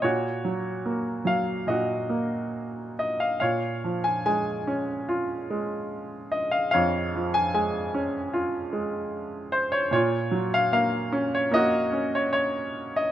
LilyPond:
<<
  \new Staff \with { instrumentName = "Grand piano" } { \time 4/4 \key bes \minor \tempo 4 = 73 << { des''4. f''8 ees''4. ees''16 f''16 | f''8. aes''16 aes''8. r4. r16 ees''16 f''16 | f''8. aes''16 aes''8. r4. r16 c''16 des''16 | des''8. f''16 f''8. des''16 ees''8. des''16 des''8. ees''16 | } \\ { ges'2 ges'2 | des''2 r2 | des''2 r2 | f'2 ges'2 | } >> }
  \new Staff \with { instrumentName = "Grand piano" } { \clef bass \time 4/4 \key bes \minor bes,8 ges8 bes8 ges8 bes,8 bes4. | bes,8 f8 aes8 des'8 f'8 aes4. | f,8 f8 aes8 des'8 f'8 aes4. | bes,8 ges8 bes8 des'8 bes8 des'4. | }
>>